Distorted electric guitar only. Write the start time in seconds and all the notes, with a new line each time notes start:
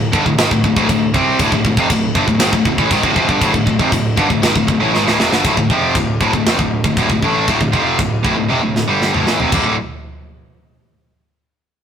0.13 G2 D3
0.26 D2 A2
0.38 G#2 D#3
0.51 D2 A2
0.64 D2 A2
0.76 D2 A2
0.89 D2 A2
1.14 C3 G3 C4
1.40 D2 A2
1.53 D2 A2
1.66 D2 A2
1.78 F2 C3
1.91 D2 A2
2.16 G2 D3
2.28 D2 A2
2.40 G#2 D#3
2.54 D2 A2
2.66 D2 A2
2.78 A2 E3
2.91 G#2 D#3
3.03 D2 A2
3.16 F2 C3
3.29 G2 D3
3.41 D2 A2
3.53 D2 A2
3.66 D2 A2
3.79 F2 C3
3.92 D2 A2
4.16 G2 D3
4.30 D2 A2
4.42 G#2 D#3
4.55 D2 A2
4.67 D2 A2
4.80 A2 E3
4.93 G#2 D#3
5.06 D2 A2
5.19 F2 C3
5.32 G2 D3
5.45 D2 A2
5.58 D2 A2
5.70 F2 C3 F3
5.96 D2 A2
6.21 D2 A2
6.35 D2 A2
6.47 F2 C3
6.60 D2 A2
6.85 D2 A2
6.98 D2 A2
7.11 D2 A2
7.23 A2 E3 A3
7.48 D2 A2
7.61 D2 A2
7.72 F2 C3 F3
7.99 D2 A2
8.24 D2 A2
8.37 D2 A2
8.49 F2 C3
8.63 D2 A2
8.88 G2 D3 G3
9.13 D2 A2
9.27 A2 E3
9.40 F2 C3
9.52 D2 A2 D3